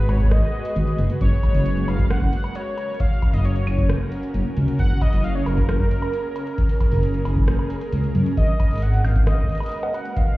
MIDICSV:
0, 0, Header, 1, 5, 480
1, 0, Start_track
1, 0, Tempo, 447761
1, 1296, Time_signature, 4, 2, 24, 8
1, 11117, End_track
2, 0, Start_track
2, 0, Title_t, "Soft synth lead"
2, 0, Program_c, 0, 80
2, 0, Note_on_c, 0, 71, 89
2, 100, Note_on_c, 0, 73, 85
2, 116, Note_off_c, 0, 71, 0
2, 340, Note_on_c, 0, 75, 92
2, 356, Note_off_c, 0, 73, 0
2, 1058, Note_off_c, 0, 75, 0
2, 1301, Note_on_c, 0, 73, 98
2, 2021, Note_on_c, 0, 77, 106
2, 2037, Note_off_c, 0, 73, 0
2, 2258, Note_on_c, 0, 78, 112
2, 2274, Note_off_c, 0, 77, 0
2, 2738, Note_on_c, 0, 73, 98
2, 2754, Note_off_c, 0, 78, 0
2, 3216, Note_on_c, 0, 77, 114
2, 3232, Note_off_c, 0, 73, 0
2, 3576, Note_on_c, 0, 75, 96
2, 3592, Note_off_c, 0, 77, 0
2, 3697, Note_on_c, 0, 73, 81
2, 3713, Note_off_c, 0, 75, 0
2, 4177, Note_off_c, 0, 73, 0
2, 5139, Note_on_c, 0, 78, 117
2, 5378, Note_on_c, 0, 75, 112
2, 5394, Note_off_c, 0, 78, 0
2, 5617, Note_on_c, 0, 77, 104
2, 5633, Note_off_c, 0, 75, 0
2, 5734, Note_on_c, 0, 73, 97
2, 5751, Note_off_c, 0, 77, 0
2, 5854, Note_on_c, 0, 70, 97
2, 5870, Note_off_c, 0, 73, 0
2, 8495, Note_off_c, 0, 70, 0
2, 8977, Note_on_c, 0, 75, 109
2, 9458, Note_on_c, 0, 78, 109
2, 9475, Note_off_c, 0, 75, 0
2, 9696, Note_on_c, 0, 77, 99
2, 9712, Note_off_c, 0, 78, 0
2, 9928, Note_off_c, 0, 77, 0
2, 9935, Note_on_c, 0, 75, 101
2, 10654, Note_on_c, 0, 78, 102
2, 10670, Note_off_c, 0, 75, 0
2, 10895, Note_on_c, 0, 77, 98
2, 10911, Note_off_c, 0, 78, 0
2, 11117, Note_off_c, 0, 77, 0
2, 11117, End_track
3, 0, Start_track
3, 0, Title_t, "Ambient pad"
3, 0, Program_c, 1, 92
3, 0, Note_on_c, 1, 56, 82
3, 0, Note_on_c, 1, 66, 76
3, 0, Note_on_c, 1, 68, 76
3, 0, Note_on_c, 1, 71, 93
3, 1254, Note_off_c, 1, 56, 0
3, 1255, Note_off_c, 1, 71, 0
3, 1258, Note_off_c, 1, 68, 0
3, 1295, Note_on_c, 1, 61, 84
3, 1295, Note_on_c, 1, 70, 89
3, 5094, Note_off_c, 1, 66, 0
3, 5134, Note_on_c, 1, 68, 75
3, 8933, Note_off_c, 1, 61, 0
3, 8937, Note_off_c, 1, 68, 0
3, 8978, Note_on_c, 1, 56, 83
3, 8978, Note_on_c, 1, 71, 96
3, 8979, Note_on_c, 1, 66, 75
3, 11117, Note_off_c, 1, 56, 0
3, 11117, Note_off_c, 1, 66, 0
3, 11117, Note_off_c, 1, 70, 0
3, 11117, Note_off_c, 1, 71, 0
3, 11117, End_track
4, 0, Start_track
4, 0, Title_t, "Detuned saw bass"
4, 0, Program_c, 2, 39
4, 96, Note_on_c, 2, 32, 95
4, 402, Note_off_c, 2, 32, 0
4, 815, Note_on_c, 2, 32, 105
4, 902, Note_off_c, 2, 32, 0
4, 1055, Note_on_c, 2, 30, 103
4, 1142, Note_off_c, 2, 30, 0
4, 1296, Note_on_c, 2, 30, 107
4, 1383, Note_off_c, 2, 30, 0
4, 1655, Note_on_c, 2, 30, 84
4, 1962, Note_off_c, 2, 30, 0
4, 2016, Note_on_c, 2, 30, 91
4, 2322, Note_off_c, 2, 30, 0
4, 2377, Note_on_c, 2, 30, 110
4, 2463, Note_off_c, 2, 30, 0
4, 3575, Note_on_c, 2, 30, 82
4, 3881, Note_off_c, 2, 30, 0
4, 3934, Note_on_c, 2, 30, 96
4, 4241, Note_off_c, 2, 30, 0
4, 4657, Note_on_c, 2, 30, 99
4, 4743, Note_off_c, 2, 30, 0
4, 4898, Note_on_c, 2, 37, 99
4, 4983, Note_off_c, 2, 37, 0
4, 5137, Note_on_c, 2, 30, 102
4, 5223, Note_off_c, 2, 30, 0
4, 5498, Note_on_c, 2, 30, 86
4, 5803, Note_off_c, 2, 30, 0
4, 5857, Note_on_c, 2, 30, 89
4, 6163, Note_off_c, 2, 30, 0
4, 6217, Note_on_c, 2, 30, 105
4, 6303, Note_off_c, 2, 30, 0
4, 7418, Note_on_c, 2, 30, 85
4, 7723, Note_off_c, 2, 30, 0
4, 7778, Note_on_c, 2, 30, 94
4, 8083, Note_off_c, 2, 30, 0
4, 8498, Note_on_c, 2, 37, 84
4, 8670, Note_off_c, 2, 37, 0
4, 8737, Note_on_c, 2, 42, 85
4, 8909, Note_off_c, 2, 42, 0
4, 8977, Note_on_c, 2, 32, 108
4, 9063, Note_off_c, 2, 32, 0
4, 9337, Note_on_c, 2, 32, 87
4, 9643, Note_off_c, 2, 32, 0
4, 9698, Note_on_c, 2, 32, 95
4, 10003, Note_off_c, 2, 32, 0
4, 10059, Note_on_c, 2, 32, 105
4, 10144, Note_off_c, 2, 32, 0
4, 11117, End_track
5, 0, Start_track
5, 0, Title_t, "Drums"
5, 7, Note_on_c, 9, 42, 18
5, 37, Note_off_c, 9, 42, 0
5, 37, Note_on_c, 9, 42, 20
5, 67, Note_off_c, 9, 42, 0
5, 67, Note_on_c, 9, 42, 23
5, 96, Note_off_c, 9, 42, 0
5, 96, Note_on_c, 9, 42, 26
5, 96, Note_on_c, 9, 46, 83
5, 96, Note_on_c, 9, 76, 77
5, 126, Note_off_c, 9, 42, 0
5, 126, Note_on_c, 9, 42, 27
5, 157, Note_off_c, 9, 42, 0
5, 157, Note_on_c, 9, 42, 31
5, 186, Note_off_c, 9, 42, 0
5, 186, Note_on_c, 9, 42, 32
5, 203, Note_off_c, 9, 46, 0
5, 203, Note_off_c, 9, 76, 0
5, 216, Note_off_c, 9, 42, 0
5, 216, Note_on_c, 9, 36, 51
5, 216, Note_on_c, 9, 42, 52
5, 256, Note_off_c, 9, 36, 0
5, 256, Note_on_c, 9, 36, 62
5, 297, Note_off_c, 9, 36, 0
5, 297, Note_on_c, 9, 36, 67
5, 323, Note_off_c, 9, 42, 0
5, 337, Note_off_c, 9, 36, 0
5, 337, Note_on_c, 9, 36, 78
5, 337, Note_on_c, 9, 37, 127
5, 337, Note_on_c, 9, 42, 83
5, 376, Note_off_c, 9, 36, 0
5, 376, Note_on_c, 9, 36, 82
5, 416, Note_off_c, 9, 36, 0
5, 416, Note_on_c, 9, 36, 93
5, 444, Note_off_c, 9, 37, 0
5, 444, Note_off_c, 9, 42, 0
5, 524, Note_off_c, 9, 36, 0
5, 697, Note_on_c, 9, 42, 77
5, 805, Note_off_c, 9, 42, 0
5, 817, Note_on_c, 9, 42, 75
5, 924, Note_off_c, 9, 42, 0
5, 936, Note_on_c, 9, 42, 37
5, 1043, Note_off_c, 9, 42, 0
5, 1055, Note_on_c, 9, 42, 77
5, 1162, Note_off_c, 9, 42, 0
5, 1176, Note_on_c, 9, 42, 56
5, 1283, Note_off_c, 9, 42, 0
5, 1296, Note_on_c, 9, 36, 118
5, 1296, Note_on_c, 9, 42, 76
5, 1403, Note_off_c, 9, 36, 0
5, 1403, Note_off_c, 9, 42, 0
5, 1536, Note_on_c, 9, 36, 107
5, 1537, Note_on_c, 9, 42, 77
5, 1537, Note_on_c, 9, 76, 49
5, 1643, Note_off_c, 9, 36, 0
5, 1644, Note_off_c, 9, 42, 0
5, 1644, Note_off_c, 9, 76, 0
5, 1656, Note_on_c, 9, 46, 79
5, 1763, Note_off_c, 9, 46, 0
5, 1776, Note_on_c, 9, 42, 74
5, 1883, Note_off_c, 9, 42, 0
5, 1897, Note_on_c, 9, 42, 33
5, 2004, Note_off_c, 9, 42, 0
5, 2016, Note_on_c, 9, 46, 82
5, 2016, Note_on_c, 9, 76, 76
5, 2123, Note_off_c, 9, 46, 0
5, 2123, Note_off_c, 9, 76, 0
5, 2136, Note_on_c, 9, 36, 111
5, 2136, Note_on_c, 9, 42, 52
5, 2243, Note_off_c, 9, 36, 0
5, 2243, Note_off_c, 9, 42, 0
5, 2256, Note_on_c, 9, 37, 126
5, 2256, Note_on_c, 9, 42, 82
5, 2363, Note_off_c, 9, 37, 0
5, 2363, Note_off_c, 9, 42, 0
5, 2376, Note_on_c, 9, 36, 86
5, 2483, Note_off_c, 9, 36, 0
5, 2496, Note_on_c, 9, 42, 78
5, 2603, Note_off_c, 9, 42, 0
5, 2616, Note_on_c, 9, 42, 52
5, 2616, Note_on_c, 9, 76, 75
5, 2723, Note_off_c, 9, 42, 0
5, 2723, Note_off_c, 9, 76, 0
5, 2735, Note_on_c, 9, 42, 79
5, 2842, Note_off_c, 9, 42, 0
5, 2976, Note_on_c, 9, 42, 77
5, 2976, Note_on_c, 9, 76, 51
5, 3083, Note_off_c, 9, 42, 0
5, 3083, Note_off_c, 9, 76, 0
5, 3095, Note_on_c, 9, 42, 24
5, 3155, Note_off_c, 9, 42, 0
5, 3155, Note_on_c, 9, 42, 31
5, 3215, Note_off_c, 9, 42, 0
5, 3215, Note_on_c, 9, 42, 77
5, 3216, Note_on_c, 9, 36, 115
5, 3275, Note_off_c, 9, 42, 0
5, 3275, Note_on_c, 9, 42, 43
5, 3323, Note_off_c, 9, 36, 0
5, 3383, Note_off_c, 9, 42, 0
5, 3455, Note_on_c, 9, 42, 71
5, 3455, Note_on_c, 9, 76, 52
5, 3456, Note_on_c, 9, 36, 100
5, 3563, Note_off_c, 9, 36, 0
5, 3563, Note_off_c, 9, 42, 0
5, 3563, Note_off_c, 9, 76, 0
5, 3575, Note_on_c, 9, 46, 85
5, 3682, Note_off_c, 9, 46, 0
5, 3694, Note_on_c, 9, 42, 71
5, 3802, Note_off_c, 9, 42, 0
5, 3815, Note_on_c, 9, 42, 35
5, 3922, Note_off_c, 9, 42, 0
5, 3935, Note_on_c, 9, 46, 85
5, 3935, Note_on_c, 9, 76, 77
5, 4042, Note_off_c, 9, 46, 0
5, 4042, Note_off_c, 9, 76, 0
5, 4055, Note_on_c, 9, 42, 48
5, 4056, Note_on_c, 9, 36, 99
5, 4162, Note_off_c, 9, 42, 0
5, 4163, Note_off_c, 9, 36, 0
5, 4175, Note_on_c, 9, 37, 125
5, 4175, Note_on_c, 9, 42, 78
5, 4282, Note_off_c, 9, 37, 0
5, 4282, Note_off_c, 9, 42, 0
5, 4414, Note_on_c, 9, 42, 75
5, 4522, Note_off_c, 9, 42, 0
5, 4535, Note_on_c, 9, 42, 49
5, 4642, Note_off_c, 9, 42, 0
5, 4655, Note_on_c, 9, 42, 78
5, 4762, Note_off_c, 9, 42, 0
5, 4895, Note_on_c, 9, 42, 74
5, 5002, Note_off_c, 9, 42, 0
5, 5016, Note_on_c, 9, 42, 54
5, 5123, Note_off_c, 9, 42, 0
5, 5135, Note_on_c, 9, 42, 80
5, 5137, Note_on_c, 9, 36, 112
5, 5243, Note_off_c, 9, 42, 0
5, 5244, Note_off_c, 9, 36, 0
5, 5376, Note_on_c, 9, 42, 74
5, 5376, Note_on_c, 9, 76, 53
5, 5377, Note_on_c, 9, 36, 102
5, 5483, Note_off_c, 9, 42, 0
5, 5483, Note_off_c, 9, 76, 0
5, 5484, Note_off_c, 9, 36, 0
5, 5496, Note_on_c, 9, 46, 82
5, 5604, Note_off_c, 9, 46, 0
5, 5617, Note_on_c, 9, 42, 78
5, 5724, Note_off_c, 9, 42, 0
5, 5856, Note_on_c, 9, 46, 83
5, 5856, Note_on_c, 9, 76, 86
5, 5964, Note_off_c, 9, 46, 0
5, 5964, Note_off_c, 9, 76, 0
5, 5977, Note_on_c, 9, 36, 101
5, 5977, Note_on_c, 9, 42, 50
5, 6084, Note_off_c, 9, 36, 0
5, 6084, Note_off_c, 9, 42, 0
5, 6097, Note_on_c, 9, 37, 120
5, 6097, Note_on_c, 9, 42, 82
5, 6204, Note_off_c, 9, 37, 0
5, 6204, Note_off_c, 9, 42, 0
5, 6217, Note_on_c, 9, 36, 84
5, 6324, Note_off_c, 9, 36, 0
5, 6337, Note_on_c, 9, 42, 83
5, 6444, Note_off_c, 9, 42, 0
5, 6457, Note_on_c, 9, 42, 52
5, 6457, Note_on_c, 9, 76, 80
5, 6564, Note_off_c, 9, 42, 0
5, 6564, Note_off_c, 9, 76, 0
5, 6576, Note_on_c, 9, 42, 76
5, 6683, Note_off_c, 9, 42, 0
5, 6816, Note_on_c, 9, 42, 80
5, 6816, Note_on_c, 9, 76, 59
5, 6923, Note_off_c, 9, 42, 0
5, 6923, Note_off_c, 9, 76, 0
5, 6935, Note_on_c, 9, 42, 51
5, 7043, Note_off_c, 9, 42, 0
5, 7055, Note_on_c, 9, 42, 85
5, 7057, Note_on_c, 9, 36, 114
5, 7162, Note_off_c, 9, 42, 0
5, 7164, Note_off_c, 9, 36, 0
5, 7175, Note_on_c, 9, 46, 58
5, 7282, Note_off_c, 9, 46, 0
5, 7295, Note_on_c, 9, 42, 76
5, 7295, Note_on_c, 9, 76, 54
5, 7296, Note_on_c, 9, 36, 107
5, 7403, Note_off_c, 9, 42, 0
5, 7403, Note_off_c, 9, 76, 0
5, 7404, Note_off_c, 9, 36, 0
5, 7415, Note_on_c, 9, 46, 76
5, 7522, Note_off_c, 9, 46, 0
5, 7536, Note_on_c, 9, 42, 76
5, 7643, Note_off_c, 9, 42, 0
5, 7656, Note_on_c, 9, 42, 36
5, 7763, Note_off_c, 9, 42, 0
5, 7776, Note_on_c, 9, 46, 77
5, 7776, Note_on_c, 9, 76, 81
5, 7883, Note_off_c, 9, 46, 0
5, 7883, Note_off_c, 9, 76, 0
5, 7896, Note_on_c, 9, 36, 103
5, 7957, Note_off_c, 9, 36, 0
5, 7957, Note_on_c, 9, 36, 76
5, 8016, Note_on_c, 9, 37, 118
5, 8016, Note_on_c, 9, 42, 83
5, 8017, Note_off_c, 9, 36, 0
5, 8017, Note_on_c, 9, 36, 65
5, 8077, Note_off_c, 9, 36, 0
5, 8077, Note_on_c, 9, 36, 51
5, 8123, Note_off_c, 9, 37, 0
5, 8123, Note_off_c, 9, 42, 0
5, 8137, Note_on_c, 9, 76, 67
5, 8184, Note_off_c, 9, 36, 0
5, 8244, Note_off_c, 9, 76, 0
5, 8255, Note_on_c, 9, 42, 78
5, 8362, Note_off_c, 9, 42, 0
5, 8376, Note_on_c, 9, 42, 54
5, 8483, Note_off_c, 9, 42, 0
5, 8495, Note_on_c, 9, 42, 78
5, 8602, Note_off_c, 9, 42, 0
5, 8617, Note_on_c, 9, 42, 39
5, 8724, Note_off_c, 9, 42, 0
5, 8736, Note_on_c, 9, 42, 84
5, 8843, Note_off_c, 9, 42, 0
5, 8857, Note_on_c, 9, 42, 56
5, 8964, Note_off_c, 9, 42, 0
5, 8977, Note_on_c, 9, 36, 115
5, 8977, Note_on_c, 9, 42, 85
5, 9084, Note_off_c, 9, 36, 0
5, 9084, Note_off_c, 9, 42, 0
5, 9217, Note_on_c, 9, 36, 107
5, 9217, Note_on_c, 9, 42, 81
5, 9217, Note_on_c, 9, 76, 53
5, 9324, Note_off_c, 9, 36, 0
5, 9324, Note_off_c, 9, 42, 0
5, 9324, Note_off_c, 9, 76, 0
5, 9338, Note_on_c, 9, 46, 34
5, 9362, Note_off_c, 9, 46, 0
5, 9362, Note_on_c, 9, 46, 42
5, 9385, Note_off_c, 9, 46, 0
5, 9385, Note_on_c, 9, 46, 51
5, 9409, Note_off_c, 9, 46, 0
5, 9409, Note_on_c, 9, 46, 58
5, 9433, Note_off_c, 9, 46, 0
5, 9433, Note_on_c, 9, 46, 62
5, 9458, Note_on_c, 9, 42, 81
5, 9541, Note_off_c, 9, 46, 0
5, 9565, Note_off_c, 9, 42, 0
5, 9577, Note_on_c, 9, 42, 38
5, 9684, Note_off_c, 9, 42, 0
5, 9697, Note_on_c, 9, 46, 74
5, 9697, Note_on_c, 9, 76, 86
5, 9804, Note_off_c, 9, 46, 0
5, 9804, Note_off_c, 9, 76, 0
5, 9817, Note_on_c, 9, 42, 55
5, 9818, Note_on_c, 9, 36, 103
5, 9924, Note_off_c, 9, 42, 0
5, 9925, Note_off_c, 9, 36, 0
5, 9936, Note_on_c, 9, 37, 120
5, 9936, Note_on_c, 9, 42, 89
5, 10043, Note_off_c, 9, 37, 0
5, 10043, Note_off_c, 9, 42, 0
5, 10118, Note_on_c, 9, 36, 83
5, 10177, Note_on_c, 9, 42, 38
5, 10207, Note_off_c, 9, 42, 0
5, 10207, Note_on_c, 9, 42, 43
5, 10225, Note_off_c, 9, 36, 0
5, 10237, Note_off_c, 9, 42, 0
5, 10237, Note_on_c, 9, 42, 49
5, 10266, Note_off_c, 9, 42, 0
5, 10266, Note_on_c, 9, 42, 54
5, 10296, Note_off_c, 9, 42, 0
5, 10296, Note_on_c, 9, 42, 55
5, 10296, Note_on_c, 9, 76, 79
5, 10327, Note_off_c, 9, 42, 0
5, 10327, Note_on_c, 9, 42, 65
5, 10356, Note_off_c, 9, 42, 0
5, 10356, Note_on_c, 9, 42, 71
5, 10387, Note_off_c, 9, 42, 0
5, 10387, Note_on_c, 9, 42, 72
5, 10403, Note_off_c, 9, 76, 0
5, 10417, Note_off_c, 9, 42, 0
5, 10417, Note_on_c, 9, 42, 80
5, 10524, Note_off_c, 9, 42, 0
5, 10538, Note_on_c, 9, 56, 94
5, 10645, Note_off_c, 9, 56, 0
5, 10659, Note_on_c, 9, 42, 82
5, 10659, Note_on_c, 9, 76, 56
5, 10766, Note_off_c, 9, 42, 0
5, 10766, Note_off_c, 9, 76, 0
5, 10777, Note_on_c, 9, 42, 60
5, 10885, Note_off_c, 9, 42, 0
5, 10897, Note_on_c, 9, 42, 87
5, 10898, Note_on_c, 9, 36, 124
5, 11004, Note_off_c, 9, 42, 0
5, 11005, Note_off_c, 9, 36, 0
5, 11117, End_track
0, 0, End_of_file